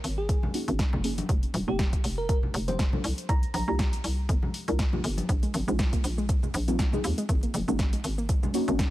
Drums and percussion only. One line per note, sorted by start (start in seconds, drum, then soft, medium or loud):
0.04 open hi-hat medium
0.29 kick loud
0.29 closed hi-hat medium
0.43 high conga medium
0.43 low conga medium
0.54 open hi-hat loud
0.68 closed hi-hat soft
0.79 kick loud
0.79 snare loud
0.79 closed hi-hat medium
0.93 high conga medium
0.93 low conga medium
1.04 open hi-hat medium
1.18 closed hi-hat soft
1.18 high conga loud
1.29 kick loud
1.29 closed hi-hat medium
1.43 closed hi-hat soft
1.54 open hi-hat loud
1.54 high conga medium
1.79 kick loud
1.79 snare loud
1.79 closed hi-hat medium
1.93 kick medium
1.93 closed hi-hat soft
2.04 open hi-hat loud
2.29 kick loud
2.29 closed hi-hat medium
2.43 low conga medium
2.54 open hi-hat loud
2.68 closed hi-hat soft
2.68 high conga loud
2.79 kick loud
2.79 snare loud
2.79 closed hi-hat medium
2.93 high conga loud
2.93 low conga medium
3.04 open hi-hat loud
3.18 closed hi-hat soft
3.29 kick loud
3.29 closed hi-hat medium
3.43 closed hi-hat soft
3.54 open hi-hat loud
3.54 high conga medium
3.79 kick loud
3.79 snare loud
3.79 closed hi-hat medium
3.93 closed hi-hat soft
4.04 open hi-hat medium
4.29 kick loud
4.29 closed hi-hat medium
4.42 high conga medium
4.42 low conga medium
4.54 open hi-hat loud
4.68 closed hi-hat soft
4.79 kick loud
4.79 snare loud
4.79 closed hi-hat medium
4.93 high conga loud
4.93 low conga medium
5.04 open hi-hat medium
5.17 closed hi-hat soft
5.17 high conga loud
5.29 kick loud
5.29 closed hi-hat medium
5.29 shaker soft
5.43 closed hi-hat soft
5.43 shaker soft
5.54 open hi-hat loud
5.54 high conga medium
5.54 shaker medium
5.68 shaker soft
5.79 kick loud
5.79 snare loud
5.79 closed hi-hat medium
5.79 shaker soft
5.93 kick medium
5.93 closed hi-hat soft
5.93 shaker soft
6.04 open hi-hat medium
6.04 shaker medium
6.18 shaker soft
6.29 kick loud
6.29 closed hi-hat medium
6.29 shaker soft
6.43 low conga medium
6.43 shaker soft
6.54 open hi-hat loud
6.54 shaker medium
6.68 closed hi-hat soft
6.68 high conga medium
6.68 shaker soft
6.79 kick loud
6.79 snare loud
6.79 closed hi-hat medium
6.79 shaker soft
6.93 high conga medium
6.93 low conga medium
6.93 shaker soft
7.04 open hi-hat medium
7.04 shaker medium
7.18 closed hi-hat medium
7.18 shaker soft
7.29 kick loud
7.29 closed hi-hat medium
7.29 shaker soft
7.43 closed hi-hat soft
7.43 shaker soft
7.54 open hi-hat loud
7.54 high conga medium
7.54 shaker medium
7.68 shaker soft
7.79 kick loud
7.79 snare loud
7.79 closed hi-hat medium
7.79 shaker soft
7.93 closed hi-hat soft
7.93 shaker soft
8.04 open hi-hat medium
8.04 shaker medium
8.18 shaker soft
8.29 kick loud
8.29 closed hi-hat medium
8.29 shaker soft
8.43 high conga medium
8.43 low conga medium
8.43 shaker soft
8.54 open hi-hat loud
8.54 shaker medium
8.68 closed hi-hat soft
8.68 shaker soft
8.79 kick loud
8.79 snare loud
8.79 closed hi-hat medium
8.79 shaker soft